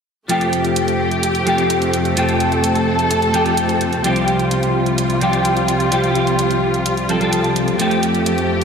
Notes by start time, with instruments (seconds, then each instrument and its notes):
0.28 string section F2 C3 A3 G4, clean electric guitar F3 A3 C4 G4, closed hi-hat
0.41 closed hi-hat
0.53 closed hi-hat
0.65 closed hi-hat
0.76 closed hi-hat
0.88 closed hi-hat
1.11 closed hi-hat
1.23 closed hi-hat
1.35 closed hi-hat
1.45 clean electric guitar F3 A3 C4 G4, closed hi-hat
1.58 closed hi-hat
1.70 closed hi-hat
1.82 closed hi-hat
1.93 closed hi-hat
2.05 closed hi-hat
2.16 clean electric guitar F3 A3 C4 G4, string section A4, closed hi-hat
2.29 closed hi-hat
2.40 closed hi-hat
2.52 closed hi-hat
2.64 closed hi-hat
2.75 closed hi-hat
2.99 closed hi-hat
3.11 closed hi-hat
3.22 closed hi-hat
3.33 clean electric guitar F3 A3 C4 G4, closed hi-hat
3.46 closed hi-hat
3.57 closed hi-hat
3.69 closed hi-hat
3.81 closed hi-hat
3.93 closed hi-hat
4.03 string section C2 G3 F4, clean electric guitar F3 G3 C4 G4, closed hi-hat
4.16 closed hi-hat
4.28 closed hi-hat
4.39 closed hi-hat
4.51 closed hi-hat
4.63 closed hi-hat
4.86 closed hi-hat
4.98 closed hi-hat
5.10 closed hi-hat
5.20 clean electric guitar F3 G3 C4 G4, closed hi-hat
5.33 closed hi-hat
5.45 closed hi-hat
5.57 closed hi-hat
5.68 closed hi-hat
5.80 closed hi-hat
5.91 clean electric guitar F3 G3 C4 G4, closed hi-hat
6.04 closed hi-hat
6.15 closed hi-hat
6.27 closed hi-hat
6.39 closed hi-hat
6.51 closed hi-hat
6.74 closed hi-hat
6.86 closed hi-hat
6.97 closed hi-hat
7.08 clean electric guitar F3 G3 C4 A4, closed hi-hat
7.20 clean electric guitar F3 G3 C4 A4, closed hi-hat
7.33 closed hi-hat
7.44 closed hi-hat
7.56 closed hi-hat
7.68 closed hi-hat
7.78 string section F2 F3 A3 G4, clean electric guitar F3 A3 C4 G4, closed hi-hat
7.91 closed hi-hat
8.03 closed hi-hat
8.15 closed hi-hat
8.26 closed hi-hat
8.38 closed hi-hat